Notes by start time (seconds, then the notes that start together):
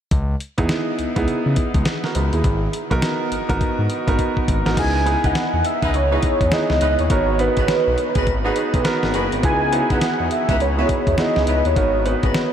0.11 C#2, kick, closed hi-hat
0.40 closed hi-hat
0.58 E2 B3 D#4 E4 G#4, kick, closed hi-hat
0.69 snare, closed hi-hat
0.99 C#2, closed hi-hat
1.16 C#2 B3 D#4 E4 G#4, kick, closed hi-hat
1.28 C#3, closed hi-hat
1.46 C#3
1.56 kick, closed hi-hat
1.74 C#2, kick, closed hi-hat
1.85 snare, closed hi-hat
2.04 F#4 A#4, snare
2.15 C#2 G#4 B4, closed hi-hat
2.33 D#2 E4 G#4, closed hi-hat
2.44 G#1, kick, closed hi-hat
2.73 closed hi-hat
2.90 B1 B3 D#4 F#4 A#4, kick, closed hi-hat
3.02 snare, closed hi-hat
3.32 G#1, closed hi-hat
3.49 G#1 B3 D#4 F#4 A#4, kick, closed hi-hat
3.61 G#2, kick, closed hi-hat
3.79 G#2
3.90 closed hi-hat
4.07 G#1 B3 D#4 F#4 A#4, kick, closed hi-hat
4.19 kick, closed hi-hat
4.37 kick
4.48 G#1, kick, closed hi-hat
4.65 G#1 B3 D#4 F#4 A#4, snare, closed hi-hat
4.77 C#2 B3 D#4 E4 G#4 G#5, kick, closed hi-hat, crash
5.06 B3 D#4 E4 G#4, closed hi-hat
5.24 C#2 D#4 E4 B4 D#5 F#5, kick, closed hi-hat
5.35 snare, closed hi-hat
5.54 E2
5.65 E5, closed hi-hat
5.82 C#2 D#4 E4 B4 D#5, kick, closed hi-hat
5.94 C#2 C#5, closed hi-hat
6.11 B3 D#4 E4 G#4 B4 D#5
6.23 kick, closed hi-hat
6.41 E2, kick, closed hi-hat
6.51 B3 D#4 E4 G#4 D#5, snare, closed hi-hat
6.70 C#2, snare
6.81 C#2 D#4 E4 B4 D#5, closed hi-hat
6.92 D#5
6.99 D#2 C#5, closed hi-hat
7.10 G#1 B3 D#4 F#4 A#4, kick, closed hi-hat
7.39 B3 D#4 F#4 B4, closed hi-hat
7.57 G#1 B3 F#4 G#4 B4, kick, closed hi-hat
7.68 snare, closed hi-hat
7.88 B1
7.98 closed hi-hat
8.15 G#1 B3 F#4 G#4 B4, kick, closed hi-hat
8.27 G#1, kick, closed hi-hat
8.44 B3 D#4 F#4 G#4 B4
8.56 closed hi-hat
8.74 B1, kick, closed hi-hat
8.84 B3 D#4 F#4 A#4, snare, closed hi-hat
9.03 G#1, snare
9.14 F#1 B3 F#4 G#4 B4, closed hi-hat
9.32 G#1, closed hi-hat
9.43 C#2 B3 D#4 E4 G#4 G#5, kick, closed hi-hat
9.72 B3 D#4 E4 F#4, closed hi-hat
9.80 G#4
9.90 C#2 B3 D#4 E4 B4 F#5, kick, closed hi-hat
10.01 snare, closed hi-hat
10.20 E2
10.31 E5, closed hi-hat
10.49 C#2 B3 D#4 E4 B4, kick, closed hi-hat
10.60 C#2 C#5, closed hi-hat
10.77 B3 D#4 E4 F#4 B4
10.85 G#4
10.89 kick, closed hi-hat
11.07 E2, kick, closed hi-hat
11.18 B3 D#4 E4 G#4 D#5, snare, closed hi-hat
11.36 C#2, snare
11.47 C#2 B3 D#4 E4 B4, closed hi-hat
11.65 D#2 C#5, closed hi-hat
11.76 G#1 B3 D#4 F#4 A#4, kick, closed hi-hat
12.05 B3 D#4 F#4 B4, closed hi-hat
12.23 G#1 B3 F#4 G#4 B4, kick, closed hi-hat
12.34 snare, closed hi-hat